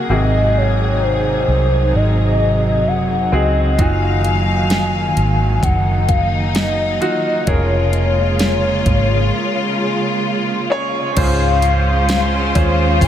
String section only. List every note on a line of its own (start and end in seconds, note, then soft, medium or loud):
0.00 3.75 G#4 medium
0.10 3.75 C3 medium
0.10 7.44 F#3 medium
0.10 3.75 D#4 medium
3.78 7.44 D#3 medium
3.78 11.13 A#3 medium
3.78 5.61 F5 medium
5.62 7.46 D#4 medium
7.48 11.14 C#3 medium
7.48 11.13 G#3 medium
7.48 11.13 F4 medium
11.17 13.08 G#3 medium
11.17 13.08 C#4 medium
11.17 13.08 F4 medium
11.17 13.08 C5 medium